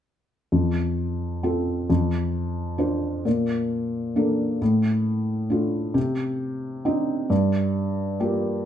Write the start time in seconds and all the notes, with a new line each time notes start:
0.52 F2
1.43 C4 F4 A4
1.90 F2
2.78 D4 F4 C5
3.25 A#2
4.16 A#3 D4 A4
4.62 A2
5.50 A3 D4 F4
5.94 C3
6.85 C4 D4 D#4
7.30 G2
8.20 A#3 F4 G4